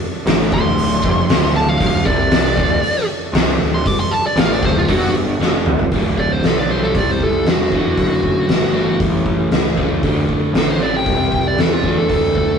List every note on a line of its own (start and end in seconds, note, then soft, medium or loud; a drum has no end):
0.00 1.76 A3 medium
0.00 1.76 D4 medium
0.00 1.76 F#4 medium
0.26 0.50 A1 loud
0.26 0.52 A2 loud
0.26 snare loud
0.26 open hi-hat medium
0.52 1.00 D1 loud
0.52 1.03 D2 loud
0.52 1.53 C6 loud
0.52 kick loud
0.78 open hi-hat medium
1.04 1.27 F1 medium
1.04 1.28 F2 loud
1.04 kick loud
1.28 1.76 D1 medium
1.28 1.79 D2 loud
1.28 snare loud
1.28 open hi-hat medium
1.56 1.68 A5 loud
1.69 2.05 F5 loud
1.80 2.04 D1 medium
1.80 2.05 D2 loud
1.80 1.97 A#3 medium
1.80 1.97 D#4 medium
1.80 1.97 G4 medium
1.80 kick medium
1.80 open hi-hat medium
1.95 5.86 A3 medium
1.95 5.86 D4 medium
1.95 5.86 F#4 medium
2.06 2.54 C2 medium
2.06 2.57 C3 loud
2.06 3.06 D5 loud
2.06 kick medium
2.31 snare loud
2.31 open hi-hat medium
2.57 2.81 D1 medium
2.57 2.82 D2 loud
2.57 kick medium
2.83 muted picked electric bass stroke soft
2.83 muted overdriven electric guitar stroke medium
2.83 open hi-hat medium
3.33 3.58 C2 medium
3.33 3.60 C3 loud
3.33 snare loud
3.33 open hi-hat medium
3.59 3.83 D1 medium
3.59 3.81 D2 medium
3.74 3.87 C6 loud
3.86 3.99 D6 loud
3.86 kick loud
3.86 open hi-hat medium
4.00 4.12 C6 loud
4.11 4.24 A5 medium
4.26 4.40 D5 loud
4.36 4.60 A1 loud
4.36 4.62 A2 loud
4.36 snare loud
4.36 open hi-hat medium
4.40 4.52 F5 loud
4.52 4.63 D5 loud
4.63 4.87 D1 loud
4.63 4.89 D2 loud
4.63 4.76 C5 loud
4.63 kick loud
4.78 4.90 F4 medium
4.88 5.36 G1 medium
4.88 5.39 G2 loud
4.88 5.14 F#4 loud
4.88 kick loud
4.88 open hi-hat medium
5.39 5.87 F1 loud
5.39 5.91 F2 loud
5.39 snare medium
5.66 mid tom medium
5.79 floor tom medium
5.91 6.41 D1 medium
5.91 6.67 D2 medium
5.91 6.68 A2 medium
5.91 6.68 D3 loud
5.91 kick medium
5.91 open hi-hat soft
6.18 6.32 D5 medium
6.18 kick medium
6.32 6.45 C5 medium
6.43 6.93 B1 medium
6.43 6.57 A4 medium
6.43 snare loud
6.43 open hi-hat soft
6.59 6.71 D5 medium
6.69 7.70 C3 medium
6.69 7.71 G3 loud
6.69 7.71 C4 loud
6.69 6.82 C5 medium
6.83 6.95 A4 medium
6.95 7.45 C2 medium
6.95 7.11 D5 medium
6.95 kick loud
6.95 open hi-hat soft
7.11 7.23 C5 medium
7.21 7.46 A4 medium
7.21 kick medium
7.45 7.95 E1 medium
7.45 8.98 F#4 medium
7.45 snare loud
7.45 open hi-hat soft
7.72 8.73 D2 medium
7.72 8.72 A2 medium
7.72 8.74 D3 medium
7.72 kick medium
7.97 8.47 F#1 medium
7.97 kick medium
7.97 open hi-hat soft
8.23 kick medium
8.48 8.98 G1 loud
8.48 snare loud
8.48 open hi-hat soft
8.74 9.75 A2 medium
8.74 9.76 E3 loud
8.74 9.76 A3 loud
9.00 9.50 A1 medium
9.00 kick loud
9.00 open hi-hat soft
9.26 kick medium
9.50 10.01 C#2 medium
9.50 snare loud
9.50 open hi-hat soft
9.77 10.02 A2 medium
9.77 10.02 E3 medium
9.77 10.01 A3 medium
9.77 kick medium
10.02 10.78 D2 medium
10.02 10.27 D2 medium
10.02 10.79 A2 medium
10.02 10.79 D3 medium
10.02 kick loud
10.02 open hi-hat soft
10.29 muted picked electric bass stroke soft
10.29 kick medium
10.53 11.04 A1 medium
10.53 snare loud
10.53 open hi-hat soft
10.58 10.70 A4 loud
10.70 10.81 C5 medium
10.80 11.82 C3 medium
10.80 11.82 G3 loud
10.80 11.83 C4 loud
10.80 10.94 D5 medium
10.97 11.45 G5 medium
11.06 11.56 C2 medium
11.06 kick loud
11.06 open hi-hat soft
11.32 kick medium
11.48 11.59 D5 medium
11.57 12.07 E2 medium
11.57 11.71 A4 medium
11.57 snare loud
11.57 open hi-hat soft
11.73 11.97 F4 medium
11.84 12.59 D2 medium
11.84 12.59 A2 medium
11.84 12.59 D3 loud
11.84 kick medium
11.98 12.35 A4 medium
12.10 12.59 D2 medium
12.10 kick loud
12.10 open hi-hat soft
12.35 12.59 A4 medium
12.35 kick medium